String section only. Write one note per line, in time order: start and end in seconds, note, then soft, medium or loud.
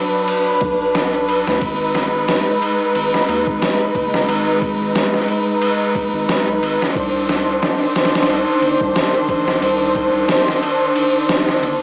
0.00 1.58 F#3 medium
0.00 1.58 D4 medium
0.00 6.91 B4 medium
1.60 6.91 G#3 medium
1.60 6.90 D#4 medium
6.95 11.82 D#3 medium
6.95 11.82 D4 medium
6.95 11.82 C5 medium